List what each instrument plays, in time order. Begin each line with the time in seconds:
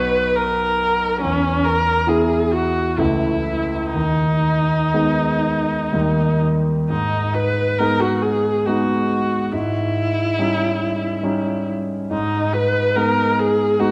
Already playing: grand piano B1 F#3 B3 D#4, viola B4
0.36 viola A#4
1.21 grand piano E2, viola C#4
1.64 viola A#4
2.07 grand piano E3 B3 E4, viola G#4
2.51 viola F#4
2.98 grand piano C#2 E3 A3 E4, viola E4
3.94 grand piano D#2, viola D#4
4.94 grand piano G#3 B3 D#4
5.93 grand piano D#2 G3 A#3 D#4
6.90 grand piano G#2, viola D#4
7.34 viola B4
7.79 grand piano G#3 B3 D#4, viola A#4
8.00 viola F#4
8.22 viola G#4
8.66 grand piano G#3 B3 D#4, viola F#4
9.52 grand piano G#2, viola E4
10.39 grand piano G3 C#4 D#4
11.23 grand piano G3 C#4 D#4
12.11 grand piano G#2, viola D#4
12.53 viola B4
12.96 grand piano G#3 B3 D#4, viola A#4
13.39 viola G#4
13.79 grand piano G#3 B3 D#4, viola F#4